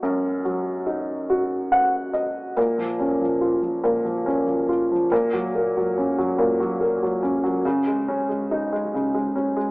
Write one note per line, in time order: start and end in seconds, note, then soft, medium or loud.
0.00 2.53 F#2 medium
0.00 0.86 D#4 soft
0.00 0.41 F#4 soft
0.45 2.10 F#3 soft
0.86 2.52 D#4 soft
1.30 2.53 F#4 soft
1.72 2.11 F#5 medium
2.13 2.53 D#5 soft
2.57 3.82 A#2 medium
2.78 3.20 F3 soft
2.99 4.25 C#4 soft
3.22 3.61 F3 soft
3.41 4.67 F4 soft
3.62 4.03 F3 soft
3.84 5.07 A#2 medium
4.05 4.45 F3 soft
4.26 5.08 C#4 soft
4.47 4.90 F3 soft
4.69 5.10 F4 soft
4.91 5.11 F3 soft
5.12 6.37 A#2 medium
5.33 5.75 F#3 soft
5.55 6.79 A#3 soft
5.77 6.17 F#3 soft
5.98 7.21 C#4 soft
6.18 6.59 F#3 medium
6.38 7.61 A#2 medium
6.60 7.01 F#3 soft
6.81 7.62 A#3 soft
7.02 7.42 F#3 soft
7.23 7.64 C#4 soft
7.44 7.64 F#3 soft
7.65 8.93 C#3 medium
7.87 8.28 G#3 soft
8.08 9.34 C#4 soft
8.29 8.71 G#3 soft
8.51 9.71 D#4 medium
8.72 9.13 G#3 soft
8.94 9.71 C#3 medium
9.14 9.55 G#3 soft
9.36 9.71 C#4 soft
9.56 9.71 G#3 soft